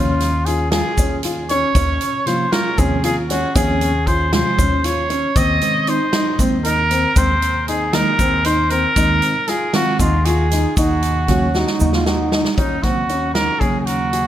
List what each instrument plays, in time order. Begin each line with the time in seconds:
Already playing: upright bass D#2, tine electric piano C3 F3 A#3, grand piano C#4, trumpet F4
0.20 snare, closed hi-hat, shaker
0.46 grand piano F4, trumpet G#4, closed hi-hat
0.72 grand piano F4, trumpet G#4, snare, closed hi-hat
0.98 upright bass D#2, grand piano C#4, kick, closed hi-hat, shaker
1.23 grand piano F4, closed hi-hat
1.49 grand piano C#4, trumpet C#5, closed hi-hat, shaker
1.75 upright bass D#2, grand piano C#4, kick, closed hi-hat, shaker
2.01 closed hi-hat, shaker
2.26 tine electric piano C3 F3 A#3, grand piano F4, trumpet C5, snare, closed hi-hat
2.52 grand piano F4, trumpet A#4, snare, closed hi-hat
2.78 upright bass D#2, tine electric piano C3 F3 C4, grand piano C#4, trumpet G#4, kick, closed hi-hat, shaker
3.04 grand piano F4, trumpet G#4, closed hi-hat
3.30 grand piano C#4, trumpet F#4, snare, closed hi-hat
3.55 upright bass D#2, tine electric piano F3 A#3 C4, grand piano C#4, trumpet G#4, kick, closed hi-hat, shaker
3.81 closed hi-hat
4.07 grand piano F4, trumpet C5, kick, closed hi-hat, shaker
4.33 tine electric piano C3 F3 G#3, grand piano F4, trumpet C5, snare, closed hi-hat
4.58 upright bass D#2, grand piano C#4, kick, closed hi-hat, shaker
4.84 grand piano F4, trumpet C#5, closed hi-hat, shaker
5.10 grand piano C#4, closed hi-hat
5.35 upright bass D#2, grand piano C4, trumpet D#5, kick, closed hi-hat, shaker
5.61 tine electric piano D#3 G#3 C4, closed hi-hat, shaker
5.87 grand piano D#4, trumpet C5, closed hi-hat
6.13 grand piano D#4, snare, closed hi-hat
6.39 upright bass D#2, tine electric piano D#3 G#3 C4, grand piano C4, kick, closed hi-hat, shaker
6.65 grand piano D#4, trumpet A#4, closed hi-hat
6.91 grand piano C4, closed hi-hat, shaker
7.16 upright bass D#2, tine electric piano D#3 G#3 C4, grand piano C4, trumpet C5, kick, closed hi-hat, shaker
7.42 closed hi-hat
7.68 grand piano D#4, trumpet G#4, closed hi-hat
7.93 tine electric piano D#3 G#3 A#3, grand piano D#4, trumpet A#4, snare, closed hi-hat
8.19 upright bass D#2, grand piano C4, kick, closed hi-hat, shaker
8.45 grand piano D#4, trumpet C5, closed hi-hat
8.70 grand piano C4, trumpet A#4, closed hi-hat
8.96 upright bass D#2, tine electric piano D#3 G#3 C4, grand piano D#4, kick, closed hi-hat, shaker
9.22 closed hi-hat
9.48 grand piano F4, trumpet G#4, snare, closed hi-hat
9.73 tine electric piano D#3 G#3 C4, grand piano F4, trumpet F#4, snare, closed hi-hat
9.99 upright bass D#2, grand piano D#4, trumpet F4, kick, closed hi-hat, shaker
10.25 grand piano F4, trumpet G#4, closed hi-hat
10.51 grand piano D#4, snare, closed hi-hat, shaker
10.77 upright bass D#2, grand piano D#4, trumpet F#4, kick, closed hi-hat, shaker
11.02 closed hi-hat
11.28 tine electric piano C#3 F#3 A#3, trombone C#4, grand piano F#4, kick, snare, closed hi-hat
11.54 trombone D#4, grand piano F#4, snare, shaker
11.67 snare
11.79 upright bass D#2, tine electric piano C#3 F#3 A#3, grand piano D#4, shaker
11.93 trombone F4, snare
12.06 trombone D#4, grand piano F#4, snare, shaker
12.32 grand piano D#4, snare
12.45 snare
12.57 upright bass D#2, grand piano C#4, trumpet D#4, kick, closed hi-hat
12.83 upright bass D#2, tine electric piano C#3 F#3 A#3, grand piano C4, trumpet F#4, kick, snare, closed hi-hat
13.09 grand piano C#4, closed hi-hat
13.34 grand piano D#4, trumpet A#4, snare, closed hi-hat
13.60 upright bass D#2, tine electric piano C#3 F#3 A#3, grand piano C#4, trumpet G#4, kick, closed hi-hat
13.80 trumpet G#4
13.86 trumpet F#4, closed hi-hat
14.13 grand piano F#4, closed hi-hat